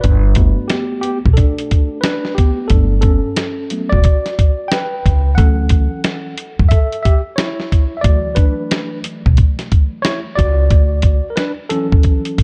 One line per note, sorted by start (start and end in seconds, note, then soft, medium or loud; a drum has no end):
0.01 0.51 G1 loud
0.01 0.71 B4 medium
0.01 kick loud
0.01 closed hi-hat medium
0.05 0.67 D4 medium
0.35 2.70 A3 soft
0.35 0.70 B3 medium
0.35 3.00 F#4 soft
0.35 kick medium
0.35 closed hi-hat medium
0.68 1.02 B3 medium
0.68 1.00 G4 medium
0.68 snare loud
0.68 closed hi-hat medium
1.01 1.19 B3 medium
1.01 1.17 G4 medium
1.01 closed hi-hat medium
1.25 1.36 B1 medium
1.25 kick medium
1.33 2.00 D4 medium
1.33 2.04 A4 medium
1.33 closed hi-hat medium
1.38 kick medium
1.58 closed hi-hat medium
1.71 kick medium
1.71 closed hi-hat medium
2.01 2.35 D4 medium
2.01 2.37 B4 loud
2.01 snare loud
2.01 closed hi-hat medium
2.25 snare soft
2.35 2.69 B3 medium
2.35 2.70 G4 medium
2.35 kick medium
2.35 closed hi-hat medium
2.68 3.18 G1 loud
2.68 3.18 F#3 medium
2.68 3.18 A3 soft
2.68 3.19 B3 soft
2.68 3.02 D4 medium
2.68 3.00 A4 medium
2.68 kick loud
2.68 closed hi-hat medium
3.01 3.88 C#4 medium
3.01 3.93 A4 medium
3.01 kick loud
3.01 closed hi-hat medium
3.36 snare loud
3.36 closed hi-hat medium
3.70 4.01 F#3 medium
3.70 4.01 A3 soft
3.70 4.01 B3 medium
3.70 closed hi-hat medium
3.89 4.03 E1 medium
3.89 4.67 F#4 medium
3.89 4.72 D5 loud
3.89 kick medium
4.04 kick medium
4.04 closed hi-hat medium
4.26 snare soft
4.26 closed hi-hat soft
4.39 kick loud
4.39 closed hi-hat medium
4.68 5.34 B4 medium
4.68 5.38 G5 loud
4.68 snare loud
4.73 closed hi-hat medium
5.06 5.34 C#2 medium
5.06 kick medium
5.06 closed hi-hat medium
5.35 5.85 D2 loud
5.35 6.33 E3 soft
5.35 6.33 F#3 soft
5.35 6.34 C#4 medium
5.35 6.67 A4 medium
5.35 6.74 F#5 medium
5.35 kick loud
5.35 closed hi-hat medium
5.69 kick loud
5.69 closed hi-hat medium
6.04 snare loud
6.04 closed hi-hat medium
6.38 closed hi-hat medium
6.59 6.70 F#2 medium
6.59 kick medium
6.69 7.02 A4 medium
6.69 7.01 E5 loud
6.69 kick medium
6.69 closed hi-hat medium
6.92 closed hi-hat soft
7.03 7.20 G4 medium
7.03 7.18 E5 medium
7.03 kick loud
7.03 closed hi-hat medium
7.36 7.96 E4 medium
7.36 7.94 C#5 medium
7.36 snare loud
7.36 closed hi-hat medium
7.60 snare soft
7.72 kick medium
7.72 closed hi-hat medium
7.97 8.03 E5 medium
8.01 8.33 D2 loud
8.01 10.66 E3 soft
8.01 10.67 F#3 soft
8.01 10.67 A3 medium
8.01 8.35 F#4 medium
8.01 8.37 D5 medium
8.01 kick loud
8.01 closed hi-hat medium
8.35 9.00 D4 medium
8.35 8.99 B4 medium
8.35 kick medium
8.35 closed hi-hat medium
8.71 snare loud
8.71 closed hi-hat medium
9.04 closed hi-hat medium
9.26 9.36 B1 medium
9.26 kick loud
9.37 kick medium
9.37 closed hi-hat medium
9.59 snare soft
9.59 closed hi-hat soft
9.72 kick loud
9.72 closed hi-hat medium
10.02 10.19 E4 medium
10.02 10.18 C#5 loud
10.02 snare loud
10.02 closed hi-hat medium
10.35 10.67 C#2 medium
10.35 11.28 F#4 medium
10.35 11.27 D5 loud
10.35 kick medium
10.35 closed hi-hat medium
10.70 11.18 D2 loud
10.70 kick loud
10.70 closed hi-hat medium
11.02 kick medium
11.02 closed hi-hat medium
11.30 11.36 A#4 medium
11.36 11.53 D4 medium
11.36 11.51 B4 medium
11.36 snare medium
11.36 closed hi-hat medium
11.69 12.43 E3 medium
11.69 12.43 F#3 medium
11.69 12.43 C#4 medium
11.69 12.43 A4 medium
11.69 closed hi-hat medium
11.92 12.03 E2 medium
11.92 kick loud
12.03 kick medium
12.03 closed hi-hat medium
12.25 closed hi-hat soft
12.38 kick loud
12.38 closed hi-hat medium